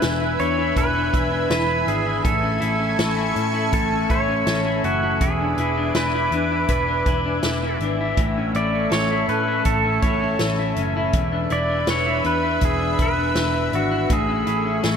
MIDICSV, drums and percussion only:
0, 0, Header, 1, 2, 480
1, 0, Start_track
1, 0, Key_signature, 3, "major"
1, 0, Tempo, 740741
1, 1456, Time_signature, 4, 2, 24, 8
1, 9699, End_track
2, 0, Start_track
2, 0, Title_t, "Drums"
2, 12, Note_on_c, 9, 42, 61
2, 13, Note_on_c, 9, 38, 102
2, 77, Note_off_c, 9, 42, 0
2, 78, Note_off_c, 9, 38, 0
2, 254, Note_on_c, 9, 42, 41
2, 319, Note_off_c, 9, 42, 0
2, 495, Note_on_c, 9, 36, 82
2, 495, Note_on_c, 9, 42, 68
2, 560, Note_off_c, 9, 36, 0
2, 560, Note_off_c, 9, 42, 0
2, 736, Note_on_c, 9, 36, 87
2, 737, Note_on_c, 9, 42, 49
2, 801, Note_off_c, 9, 36, 0
2, 802, Note_off_c, 9, 42, 0
2, 975, Note_on_c, 9, 38, 105
2, 975, Note_on_c, 9, 42, 63
2, 1039, Note_off_c, 9, 42, 0
2, 1040, Note_off_c, 9, 38, 0
2, 1218, Note_on_c, 9, 42, 48
2, 1282, Note_off_c, 9, 42, 0
2, 1456, Note_on_c, 9, 36, 97
2, 1457, Note_on_c, 9, 42, 66
2, 1521, Note_off_c, 9, 36, 0
2, 1522, Note_off_c, 9, 42, 0
2, 1695, Note_on_c, 9, 42, 47
2, 1759, Note_off_c, 9, 42, 0
2, 1936, Note_on_c, 9, 42, 60
2, 1937, Note_on_c, 9, 38, 104
2, 2000, Note_off_c, 9, 42, 0
2, 2002, Note_off_c, 9, 38, 0
2, 2177, Note_on_c, 9, 42, 41
2, 2242, Note_off_c, 9, 42, 0
2, 2415, Note_on_c, 9, 42, 66
2, 2416, Note_on_c, 9, 36, 80
2, 2480, Note_off_c, 9, 36, 0
2, 2480, Note_off_c, 9, 42, 0
2, 2656, Note_on_c, 9, 36, 85
2, 2656, Note_on_c, 9, 42, 48
2, 2721, Note_off_c, 9, 36, 0
2, 2721, Note_off_c, 9, 42, 0
2, 2895, Note_on_c, 9, 38, 98
2, 2895, Note_on_c, 9, 42, 59
2, 2959, Note_off_c, 9, 42, 0
2, 2960, Note_off_c, 9, 38, 0
2, 3136, Note_on_c, 9, 42, 45
2, 3201, Note_off_c, 9, 42, 0
2, 3375, Note_on_c, 9, 36, 91
2, 3375, Note_on_c, 9, 42, 68
2, 3440, Note_off_c, 9, 36, 0
2, 3440, Note_off_c, 9, 42, 0
2, 3613, Note_on_c, 9, 42, 46
2, 3678, Note_off_c, 9, 42, 0
2, 3853, Note_on_c, 9, 42, 58
2, 3854, Note_on_c, 9, 38, 104
2, 3918, Note_off_c, 9, 42, 0
2, 3919, Note_off_c, 9, 38, 0
2, 4095, Note_on_c, 9, 42, 42
2, 4160, Note_off_c, 9, 42, 0
2, 4331, Note_on_c, 9, 42, 69
2, 4334, Note_on_c, 9, 36, 80
2, 4396, Note_off_c, 9, 42, 0
2, 4399, Note_off_c, 9, 36, 0
2, 4575, Note_on_c, 9, 42, 48
2, 4576, Note_on_c, 9, 36, 88
2, 4640, Note_off_c, 9, 36, 0
2, 4640, Note_off_c, 9, 42, 0
2, 4813, Note_on_c, 9, 38, 100
2, 4813, Note_on_c, 9, 42, 63
2, 4878, Note_off_c, 9, 38, 0
2, 4878, Note_off_c, 9, 42, 0
2, 5057, Note_on_c, 9, 42, 44
2, 5121, Note_off_c, 9, 42, 0
2, 5296, Note_on_c, 9, 42, 70
2, 5297, Note_on_c, 9, 36, 95
2, 5360, Note_off_c, 9, 42, 0
2, 5361, Note_off_c, 9, 36, 0
2, 5537, Note_on_c, 9, 42, 47
2, 5602, Note_off_c, 9, 42, 0
2, 5777, Note_on_c, 9, 42, 60
2, 5778, Note_on_c, 9, 38, 103
2, 5841, Note_off_c, 9, 42, 0
2, 5843, Note_off_c, 9, 38, 0
2, 6017, Note_on_c, 9, 42, 38
2, 6082, Note_off_c, 9, 42, 0
2, 6252, Note_on_c, 9, 42, 67
2, 6256, Note_on_c, 9, 36, 81
2, 6317, Note_off_c, 9, 42, 0
2, 6320, Note_off_c, 9, 36, 0
2, 6494, Note_on_c, 9, 42, 48
2, 6496, Note_on_c, 9, 36, 84
2, 6559, Note_off_c, 9, 42, 0
2, 6561, Note_off_c, 9, 36, 0
2, 6734, Note_on_c, 9, 38, 98
2, 6734, Note_on_c, 9, 42, 62
2, 6798, Note_off_c, 9, 42, 0
2, 6799, Note_off_c, 9, 38, 0
2, 6975, Note_on_c, 9, 42, 46
2, 7039, Note_off_c, 9, 42, 0
2, 7213, Note_on_c, 9, 42, 71
2, 7216, Note_on_c, 9, 36, 99
2, 7278, Note_off_c, 9, 42, 0
2, 7280, Note_off_c, 9, 36, 0
2, 7452, Note_on_c, 9, 42, 46
2, 7517, Note_off_c, 9, 42, 0
2, 7692, Note_on_c, 9, 42, 63
2, 7693, Note_on_c, 9, 38, 106
2, 7756, Note_off_c, 9, 42, 0
2, 7758, Note_off_c, 9, 38, 0
2, 7934, Note_on_c, 9, 42, 39
2, 7998, Note_off_c, 9, 42, 0
2, 8172, Note_on_c, 9, 42, 68
2, 8175, Note_on_c, 9, 36, 84
2, 8236, Note_off_c, 9, 42, 0
2, 8240, Note_off_c, 9, 36, 0
2, 8415, Note_on_c, 9, 42, 47
2, 8417, Note_on_c, 9, 36, 85
2, 8480, Note_off_c, 9, 42, 0
2, 8482, Note_off_c, 9, 36, 0
2, 8653, Note_on_c, 9, 42, 60
2, 8654, Note_on_c, 9, 38, 103
2, 8718, Note_off_c, 9, 42, 0
2, 8719, Note_off_c, 9, 38, 0
2, 8897, Note_on_c, 9, 42, 48
2, 8962, Note_off_c, 9, 42, 0
2, 9136, Note_on_c, 9, 42, 66
2, 9137, Note_on_c, 9, 36, 101
2, 9200, Note_off_c, 9, 42, 0
2, 9201, Note_off_c, 9, 36, 0
2, 9375, Note_on_c, 9, 42, 48
2, 9439, Note_off_c, 9, 42, 0
2, 9612, Note_on_c, 9, 42, 61
2, 9614, Note_on_c, 9, 38, 101
2, 9677, Note_off_c, 9, 42, 0
2, 9679, Note_off_c, 9, 38, 0
2, 9699, End_track
0, 0, End_of_file